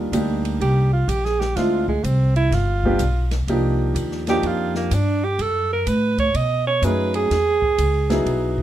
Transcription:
Already playing: upright bass D#2, upright piano G3 A#3 D4 D#4 F4
0.12 upright bass D2, upright piano G3 A#3 D4 D#4 G4, hi-hat pedal, ride
0.45 ride
0.60 upright bass C2, alto saxophone G4, ride
0.93 alto saxophone F4
1.08 upright bass A#1, alto saxophone G4, hi-hat pedal, ride
1.25 alto saxophone G#4, snare
1.40 alto saxophone G4, snare
1.56 upright bass D2, upright piano G#3 C4 D4 E4 F4, alto saxophone F4, snare, ride
1.88 alto saxophone G#3, kick
2.04 upright bass C2, alto saxophone C4, hi-hat pedal, ride
2.36 alto saxophone E4, ride
2.51 upright bass G1, alto saxophone F4, snare, ride
2.84 upright piano G3 B3 D4 F4 G4, kick
2.99 upright bass B1, hi-hat pedal, ride
3.31 snare, ride
3.47 upright bass C2, upright piano F3 A#3 D4 D#4 G4, ride
3.94 upright bass D#2, hi-hat pedal, ride
4.12 snare
4.27 upright piano F3 A#3 D4 D#4 G4, alto saxophone G4, snare, ride
4.43 upright bass F2, ride
4.47 alto saxophone F4
4.75 alto saxophone A#3, snare
4.91 upright bass G2, alto saxophone D4, hi-hat pedal, ride
5.24 alto saxophone G4
5.39 upright bass F#2, alto saxophone A4, ride
5.73 alto saxophone A#4
5.87 upright bass A2, alto saxophone B4, hi-hat pedal, ride
6.18 alto saxophone C#5, kick, ride
6.34 upright bass B2, alto saxophone D#5, ride
6.67 alto saxophone C#5
6.82 upright bass F#2, upright piano F#3 A3 C#4 D#4 G#4, alto saxophone B4, hi-hat pedal, ride
7.14 alto saxophone G#4, ride
7.30 upright bass E2, snare, ride
7.62 kick
7.78 upright bass C#2, hi-hat pedal, ride
8.10 upright piano F#3 B3 D#4 E4 G#4, snare, ride
8.26 upright bass B1, ride
8.58 kick

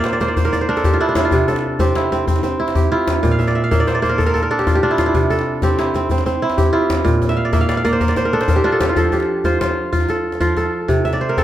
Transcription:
Already playing: kora A#2 A#3 C4 G4 D5 E5 F5 G5
0.04 kora C5, djembe slap
0.12 kora D5, djembe slap
0.20 kora A#3 C5, djembe slap, djembe tone
0.28 kora D5
0.37 kora C5, djembe bass
0.45 kora A#4, djembe slap
0.53 kora D5, djembe slap, djembe tone
0.61 kora C5, djembe slap
0.69 kora D4 A#4, djembe slap
0.77 kora A4, djembe slap
0.84 kora G4, djembe slap, djembe tone, djembe bass
0.92 kora F4, djembe slap
1.00 kora D4 E4
1.08 kora D4, djembe slap
1.15 kora E4, djembe slap, djembe tone
1.25 kora F4
1.31 kora C3, djembe bass
1.40 djembe slap
1.48 kora A4, djembe tone
1.56 djembe slap
1.79 kora C4 G4, djembe tone, djembe bass
1.95 kora E4, djembe slap
2.12 kora C4, djembe tone
2.28 kora C4, djembe bass
2.36 djembe slap
2.43 kora C4, djembe tone
2.60 kora E4
2.68 djembe slap
2.75 kora G4, djembe tone, djembe bass
2.92 kora E4 F4, djembe slap
3.08 djembe slap, djembe tone
3.23 kora A#2, djembe bass
3.31 kora F5, djembe slap
3.39 kora E5, djembe tone
3.47 kora D5, djembe slap
3.55 kora E5
3.64 kora F5
3.71 kora A#3 E5, djembe tone, djembe bass
3.80 kora D5
3.87 kora C5, djembe slap
3.95 kora D5
4.02 kora A#3 C5, djembe tone
4.09 kora A#4
4.18 kora A4, djembe bass
4.26 kora A#4, djembe slap
4.34 kora A4, djembe tone
4.43 kora A#4
4.51 kora D4 A4
4.59 kora G4, djembe slap
4.67 kora F4, djembe tone, djembe bass
4.75 kora G4
4.83 kora D4 F4, djembe slap
4.91 kora E4
4.98 kora F4, djembe slap, djembe tone
5.06 kora E4
5.14 kora C3, djembe bass
5.23 djembe slap
5.30 kora A4, djembe tone
5.39 djembe slap
5.62 kora C4 G4, djembe tone, djembe bass
5.79 kora E4, djembe slap
5.94 kora C4, djembe tone
6.10 kora C4, djembe bass
6.18 djembe slap
6.26 kora C4, djembe tone
6.42 kora E4
6.50 djembe slap
6.58 kora G4, djembe tone, djembe bass
6.73 kora E4 F4, djembe slap
6.90 djembe slap, djembe tone
7.04 kora A#2, djembe slap, djembe bass
7.22 djembe slap, djembe tone
7.29 kora E5, djembe slap
7.37 kora F5
7.45 kora D5
7.53 kora A#3 E5, djembe tone, djembe bass
7.61 kora F5
7.69 kora D5, djembe slap
7.77 kora F5
7.84 kora A#3 D5, djembe slap, djembe tone
7.93 kora C5
8.01 kora A#4, djembe slap, djembe bass
8.08 kora D5, djembe slap
8.16 kora C5, djembe slap, djembe tone
8.25 kora A#4
8.33 kora D4 A4
8.41 kora C5, djembe slap
8.48 kora A#4, djembe tone, djembe bass
8.56 kora G4
8.64 kora D4 F4, djembe slap
8.72 kora A4
8.81 kora G4, djembe slap, djembe tone
8.89 kora F4
8.96 kora F3 A4, djembe bass
9.12 kora G4, djembe tone
9.20 djembe slap
9.36 djembe slap
9.44 kora F4 C5, djembe bass
9.61 kora F4, djembe slap, djembe tone
9.93 kora F4, djembe bass
10.00 djembe slap
10.09 kora A4, djembe tone
10.32 djembe slap
10.40 kora F3 F4, djembe bass
10.57 kora A4, djembe tone
10.64 djembe slap
10.88 kora C3, djembe bass
11.05 kora E5, djembe tone
11.13 kora D5, djembe slap
11.21 kora C5
11.29 kora A#4, djembe slap
11.37 kora C4 A4, djembe bass

